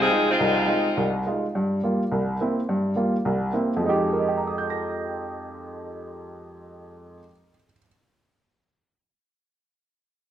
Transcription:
0, 0, Header, 1, 3, 480
1, 0, Start_track
1, 0, Key_signature, -4, "minor"
1, 0, Tempo, 286533
1, 660, Time_signature, 4, 2, 24, 8
1, 17256, End_track
2, 0, Start_track
2, 0, Title_t, "Saxophone section"
2, 0, Program_c, 0, 65
2, 19, Note_on_c, 0, 60, 88
2, 28, Note_on_c, 0, 53, 86
2, 32, Note_on_c, 0, 63, 85
2, 33, Note_on_c, 0, 68, 103
2, 455, Note_off_c, 0, 60, 0
2, 460, Note_off_c, 0, 53, 0
2, 462, Note_off_c, 0, 63, 0
2, 462, Note_off_c, 0, 68, 0
2, 513, Note_on_c, 0, 60, 82
2, 523, Note_on_c, 0, 56, 85
2, 523, Note_on_c, 0, 63, 85
2, 527, Note_on_c, 0, 65, 94
2, 2047, Note_off_c, 0, 60, 0
2, 2052, Note_off_c, 0, 56, 0
2, 2052, Note_off_c, 0, 63, 0
2, 2054, Note_off_c, 0, 65, 0
2, 17256, End_track
3, 0, Start_track
3, 0, Title_t, "Grand piano"
3, 0, Program_c, 1, 0
3, 178, Note_on_c, 1, 63, 47
3, 183, Note_on_c, 1, 56, 50
3, 193, Note_on_c, 1, 65, 57
3, 495, Note_off_c, 1, 63, 0
3, 497, Note_off_c, 1, 56, 0
3, 502, Note_off_c, 1, 65, 0
3, 673, Note_on_c, 1, 36, 68
3, 1078, Note_off_c, 1, 36, 0
3, 1137, Note_on_c, 1, 56, 54
3, 1139, Note_on_c, 1, 63, 50
3, 1153, Note_on_c, 1, 65, 57
3, 1454, Note_off_c, 1, 56, 0
3, 1454, Note_off_c, 1, 63, 0
3, 1461, Note_off_c, 1, 65, 0
3, 1628, Note_on_c, 1, 36, 68
3, 2035, Note_off_c, 1, 36, 0
3, 2119, Note_on_c, 1, 56, 46
3, 2125, Note_on_c, 1, 63, 46
3, 2136, Note_on_c, 1, 65, 53
3, 2424, Note_off_c, 1, 56, 0
3, 2426, Note_off_c, 1, 63, 0
3, 2432, Note_off_c, 1, 65, 0
3, 2600, Note_on_c, 1, 43, 70
3, 3000, Note_off_c, 1, 43, 0
3, 3074, Note_on_c, 1, 55, 50
3, 3077, Note_on_c, 1, 58, 44
3, 3087, Note_on_c, 1, 65, 57
3, 3380, Note_off_c, 1, 55, 0
3, 3382, Note_off_c, 1, 58, 0
3, 3387, Note_off_c, 1, 65, 0
3, 3544, Note_on_c, 1, 36, 64
3, 3952, Note_off_c, 1, 36, 0
3, 4033, Note_on_c, 1, 58, 46
3, 4038, Note_on_c, 1, 60, 49
3, 4045, Note_on_c, 1, 64, 56
3, 4340, Note_off_c, 1, 58, 0
3, 4342, Note_off_c, 1, 60, 0
3, 4345, Note_off_c, 1, 64, 0
3, 4505, Note_on_c, 1, 43, 71
3, 4912, Note_off_c, 1, 43, 0
3, 4953, Note_on_c, 1, 55, 51
3, 4962, Note_on_c, 1, 58, 48
3, 4974, Note_on_c, 1, 65, 58
3, 5279, Note_off_c, 1, 55, 0
3, 5284, Note_off_c, 1, 58, 0
3, 5290, Note_off_c, 1, 65, 0
3, 5450, Note_on_c, 1, 36, 67
3, 5864, Note_off_c, 1, 36, 0
3, 5920, Note_on_c, 1, 58, 52
3, 5926, Note_on_c, 1, 60, 43
3, 5928, Note_on_c, 1, 64, 52
3, 6243, Note_off_c, 1, 58, 0
3, 6245, Note_off_c, 1, 60, 0
3, 6246, Note_off_c, 1, 64, 0
3, 6306, Note_on_c, 1, 41, 66
3, 6357, Note_on_c, 1, 53, 55
3, 6412, Note_on_c, 1, 56, 60
3, 6464, Note_on_c, 1, 63, 60
3, 6518, Note_on_c, 1, 67, 71
3, 6914, Note_on_c, 1, 70, 44
3, 7034, Note_on_c, 1, 75, 40
3, 7173, Note_on_c, 1, 79, 40
3, 7326, Note_on_c, 1, 82, 38
3, 7495, Note_on_c, 1, 87, 34
3, 7674, Note_on_c, 1, 91, 34
3, 7875, Note_on_c, 1, 94, 36
3, 12010, Note_off_c, 1, 41, 0
3, 12060, Note_off_c, 1, 53, 0
3, 12116, Note_off_c, 1, 56, 0
3, 12167, Note_off_c, 1, 63, 0
3, 12222, Note_off_c, 1, 67, 0
3, 12551, Note_off_c, 1, 70, 0
3, 12670, Note_off_c, 1, 75, 0
3, 12809, Note_off_c, 1, 79, 0
3, 12916, Note_off_c, 1, 82, 0
3, 13000, Note_off_c, 1, 87, 0
3, 13090, Note_off_c, 1, 91, 0
3, 13190, Note_off_c, 1, 94, 0
3, 17256, End_track
0, 0, End_of_file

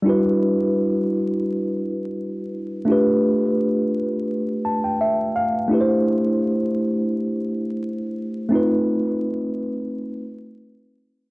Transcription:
0, 0, Header, 1, 2, 480
1, 0, Start_track
1, 0, Key_signature, 1, "minor"
1, 0, Tempo, 705882
1, 37, Time_signature, 4, 2, 24, 8
1, 7686, End_track
2, 0, Start_track
2, 0, Title_t, "Tine electric piano"
2, 0, Program_c, 0, 4
2, 17, Note_on_c, 0, 55, 73
2, 28, Note_on_c, 0, 62, 62
2, 40, Note_on_c, 0, 64, 65
2, 49, Note_on_c, 0, 66, 67
2, 64, Note_on_c, 0, 71, 80
2, 166, Control_c, 0, 64, 127
2, 1920, Note_off_c, 0, 55, 0
2, 1926, Note_off_c, 0, 62, 0
2, 1932, Note_off_c, 0, 64, 0
2, 1936, Note_off_c, 0, 66, 0
2, 1939, Note_on_c, 0, 57, 72
2, 1943, Note_off_c, 0, 71, 0
2, 1948, Note_on_c, 0, 62, 61
2, 1960, Note_on_c, 0, 65, 63
2, 1965, Control_c, 0, 64, 0
2, 1971, Note_on_c, 0, 67, 60
2, 1983, Note_on_c, 0, 71, 79
2, 2075, Control_c, 0, 64, 127
2, 3161, Note_on_c, 0, 81, 60
2, 3282, Note_off_c, 0, 81, 0
2, 3291, Note_on_c, 0, 79, 61
2, 3391, Note_off_c, 0, 79, 0
2, 3405, Note_on_c, 0, 76, 66
2, 3625, Note_off_c, 0, 76, 0
2, 3642, Note_on_c, 0, 77, 75
2, 3841, Note_off_c, 0, 57, 0
2, 3845, Note_off_c, 0, 62, 0
2, 3852, Note_off_c, 0, 65, 0
2, 3857, Note_off_c, 0, 67, 0
2, 3862, Note_on_c, 0, 57, 70
2, 3863, Note_off_c, 0, 71, 0
2, 3863, Note_off_c, 0, 77, 0
2, 3872, Note_on_c, 0, 62, 64
2, 3884, Note_on_c, 0, 64, 64
2, 3887, Control_c, 0, 64, 0
2, 3895, Note_on_c, 0, 67, 65
2, 3905, Note_on_c, 0, 71, 64
2, 3940, Note_off_c, 0, 71, 0
2, 3949, Note_on_c, 0, 72, 76
2, 3988, Control_c, 0, 64, 127
2, 5763, Note_off_c, 0, 57, 0
2, 5768, Note_off_c, 0, 62, 0
2, 5773, Note_off_c, 0, 64, 0
2, 5774, Note_on_c, 0, 57, 67
2, 5779, Note_off_c, 0, 67, 0
2, 5786, Note_on_c, 0, 60, 63
2, 5797, Note_on_c, 0, 63, 67
2, 5805, Control_c, 0, 64, 0
2, 5806, Note_off_c, 0, 72, 0
2, 5808, Note_on_c, 0, 65, 62
2, 5818, Note_on_c, 0, 71, 81
2, 5924, Control_c, 0, 64, 127
2, 7679, Note_off_c, 0, 57, 0
2, 7685, Note_off_c, 0, 60, 0
2, 7686, Note_off_c, 0, 63, 0
2, 7686, Note_off_c, 0, 65, 0
2, 7686, Note_off_c, 0, 71, 0
2, 7686, End_track
0, 0, End_of_file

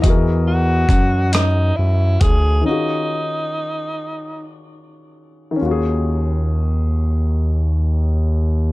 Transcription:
0, 0, Header, 1, 5, 480
1, 0, Start_track
1, 0, Tempo, 864553
1, 18, Time_signature, 6, 3, 24, 8
1, 979, Tempo, 914634
1, 1939, Tempo, 975610
1, 2419, Tempo, 1032702
1, 2899, Tempo, 1063830
1, 4307, End_track
2, 0, Start_track
2, 0, Title_t, "Grand piano"
2, 0, Program_c, 0, 0
2, 0, Control_c, 0, 64, 127
2, 0, Note_on_c, 0, 52, 69
2, 11, Note_on_c, 0, 75, 61
2, 26, Control_c, 0, 64, 0
2, 26, Note_on_c, 0, 66, 61
2, 41, Note_on_c, 0, 68, 60
2, 54, Note_on_c, 0, 70, 72
2, 139, Control_c, 0, 64, 127
2, 1418, Note_off_c, 0, 52, 0
2, 1425, Note_off_c, 0, 75, 0
2, 1427, Note_on_c, 0, 51, 50
2, 1432, Note_off_c, 0, 66, 0
2, 1439, Note_off_c, 0, 68, 0
2, 1442, Note_on_c, 0, 61, 43
2, 1445, Note_off_c, 0, 70, 0
2, 1453, Note_on_c, 0, 65, 48
2, 1456, Control_c, 0, 64, 0
2, 1467, Note_on_c, 0, 66, 52
2, 1480, Note_on_c, 0, 68, 53
2, 1553, Control_c, 0, 64, 127
2, 2851, Note_off_c, 0, 51, 0
2, 2858, Note_on_c, 0, 51, 59
2, 2874, Note_off_c, 0, 61, 0
2, 2881, Note_off_c, 0, 65, 0
2, 2881, Note_on_c, 0, 61, 55
2, 2887, Note_off_c, 0, 66, 0
2, 2893, Note_off_c, 0, 68, 0
2, 2903, Note_on_c, 0, 65, 52
2, 2904, Control_c, 0, 64, 0
2, 2926, Note_on_c, 0, 66, 56
2, 2949, Note_on_c, 0, 68, 67
2, 2987, Control_c, 0, 64, 127
2, 4307, Note_off_c, 0, 51, 0
2, 4307, Note_off_c, 0, 61, 0
2, 4307, Note_off_c, 0, 65, 0
2, 4307, Note_off_c, 0, 66, 0
2, 4307, Note_off_c, 0, 68, 0
2, 4307, End_track
3, 0, Start_track
3, 0, Title_t, "Tenor saxophone"
3, 0, Program_c, 1, 66
3, 264, Note_on_c, 1, 66, 82
3, 738, Note_on_c, 1, 63, 68
3, 747, Note_off_c, 1, 66, 0
3, 978, Note_on_c, 1, 64, 79
3, 986, Note_off_c, 1, 63, 0
3, 1212, Note_on_c, 1, 68, 90
3, 1220, Note_off_c, 1, 64, 0
3, 1447, Note_off_c, 1, 68, 0
3, 1450, Note_on_c, 1, 63, 70
3, 2399, Note_off_c, 1, 63, 0
3, 4307, End_track
4, 0, Start_track
4, 0, Title_t, "Analog synth bass"
4, 0, Program_c, 2, 38
4, 23, Note_on_c, 2, 40, 109
4, 475, Note_off_c, 2, 40, 0
4, 497, Note_on_c, 2, 42, 82
4, 957, Note_off_c, 2, 42, 0
4, 991, Note_on_c, 2, 42, 76
4, 1197, Note_off_c, 2, 42, 0
4, 1220, Note_on_c, 2, 38, 84
4, 1432, Note_off_c, 2, 38, 0
4, 2909, Note_on_c, 2, 39, 77
4, 4307, Note_off_c, 2, 39, 0
4, 4307, End_track
5, 0, Start_track
5, 0, Title_t, "Drums"
5, 20, Note_on_c, 9, 36, 86
5, 21, Note_on_c, 9, 42, 58
5, 76, Note_off_c, 9, 36, 0
5, 76, Note_off_c, 9, 42, 0
5, 493, Note_on_c, 9, 36, 76
5, 497, Note_on_c, 9, 42, 54
5, 548, Note_off_c, 9, 36, 0
5, 553, Note_off_c, 9, 42, 0
5, 738, Note_on_c, 9, 42, 65
5, 748, Note_on_c, 9, 37, 86
5, 793, Note_off_c, 9, 42, 0
5, 803, Note_off_c, 9, 37, 0
5, 1212, Note_on_c, 9, 42, 62
5, 1214, Note_on_c, 9, 36, 84
5, 1265, Note_off_c, 9, 42, 0
5, 1267, Note_off_c, 9, 36, 0
5, 4307, End_track
0, 0, End_of_file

